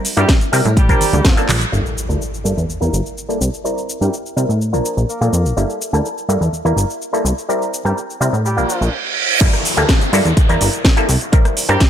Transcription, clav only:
0.00 0.14 G3 medium
0.00 0.14 C4 medium
0.00 0.14 E4 medium
0.00 0.14 A#4 loud
0.17 0.31 G3 medium
0.17 0.31 C4 medium
0.17 0.31 E4 medium
0.17 0.31 A#4 medium
0.52 0.67 G3 medium
0.52 0.67 C4 medium
0.52 0.67 E4 medium
0.52 0.67 A#4 loud
0.89 1.34 F3 medium
0.89 1.34 A#3 medium
0.89 1.34 D4 medium
0.89 1.34 A#4 loud
1.37 1.51 F3 loud
1.37 1.51 A#3 medium
1.37 1.51 D4 medium
1.37 1.51 A4 loud
1.72 2.06 G3 medium
1.72 2.06 A#3 medium
1.72 2.06 E4 medium
1.72 2.06 A4 medium
2.09 2.23 G3 medium
2.09 2.23 A#3 medium
2.09 2.23 E4 medium
2.09 2.23 A4 medium
2.44 2.59 G3 medium
2.44 2.59 A#3 medium
2.44 2.59 E4 medium
2.44 2.59 A4 medium
2.81 3.26 G3 medium
2.81 3.26 A#3 medium
2.81 3.26 E4 medium
2.81 3.26 A#4 medium
3.29 3.39 G3 medium
3.29 3.39 A#3 medium
3.29 3.39 E4 medium
3.29 3.40 A4 loud
3.64 3.98 G3 medium
3.64 3.98 C4 medium
3.64 3.98 E4 medium
3.64 3.98 A#4 medium
4.01 4.15 G3 medium
4.01 4.15 C4 medium
4.01 4.15 E4 medium
4.01 4.15 A#4 medium
4.36 4.51 G3 medium
4.36 4.51 C4 medium
4.36 4.51 E4 medium
4.36 4.51 A#4 medium
4.73 5.18 F3 medium
4.73 5.18 A#3 medium
4.73 5.18 D4 medium
4.73 5.18 A#4 medium
5.21 5.35 F3 medium
5.21 5.35 A#3 medium
5.21 5.35 D4 medium
5.21 5.35 A4 loud
5.57 5.90 G3 medium
5.57 5.90 A#3 medium
5.57 5.90 E4 medium
5.57 5.91 A4 medium
5.93 6.07 G3 medium
5.93 6.07 A#3 medium
5.93 6.07 E4 medium
5.93 6.07 A4 medium
6.29 6.43 G3 medium
6.29 6.43 A#3 medium
6.29 6.43 E4 medium
6.29 6.44 A4 medium
6.65 7.10 G3 medium
6.65 7.10 A#3 medium
6.65 7.10 E4 medium
6.65 7.11 A#4 medium
7.13 7.23 G3 medium
7.13 7.23 A#3 medium
7.13 7.24 E4 medium
7.13 7.24 A4 loud
7.49 7.82 G3 medium
7.49 7.82 C4 medium
7.49 7.82 E4 medium
7.49 7.83 A#4 loud
7.85 7.99 G3 medium
7.85 7.99 C4 medium
7.85 7.99 E4 medium
7.85 7.99 A#4 medium
8.20 8.35 G3 medium
8.20 8.35 C4 medium
8.20 8.35 E4 medium
8.20 8.35 A#4 medium
8.57 8.93 F3 medium
8.57 8.93 A#3 medium
8.57 8.93 D4 medium
8.57 8.93 A#4 loud
9.40 9.74 G3 medium
9.40 9.74 A#3 medium
9.40 9.74 E4 medium
9.40 9.75 A4 loud
9.77 9.91 G3 medium
9.77 9.91 A#3 medium
9.77 9.91 E4 medium
9.77 9.91 A4 medium
10.13 10.27 G3 medium
10.13 10.27 A#3 medium
10.13 10.27 E4 medium
10.13 10.28 A4 loud
10.49 10.94 G3 medium
10.49 10.94 A#3 medium
10.49 10.94 E4 medium
10.49 10.95 A#4 loud
10.96 11.07 G3 loud
10.96 11.07 A#3 medium
10.96 11.07 E4 medium
10.96 11.08 A4 loud
11.32 11.66 G3 medium
11.32 11.66 C4 medium
11.32 11.66 E4 medium
11.32 11.66 A#4 loud
11.69 11.83 G3 medium
11.69 11.83 C4 medium
11.69 11.83 E4 medium
11.69 11.83 A#4 medium

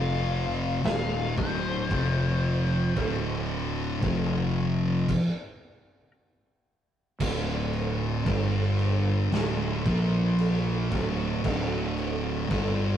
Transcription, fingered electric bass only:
0.00 0.80 F1 loud
0.84 1.33 D#1 loud
1.38 1.87 D1 loud
1.91 2.93 F1 medium
2.97 3.99 D1 medium
4.03 5.05 F1 medium
7.20 8.23 D1 medium
8.26 9.29 G1 loud
9.32 9.82 D1 medium
9.86 10.88 A#1 loud
10.92 11.41 D1 loud
11.45 12.47 D1 medium
12.51 12.97 G1 loud

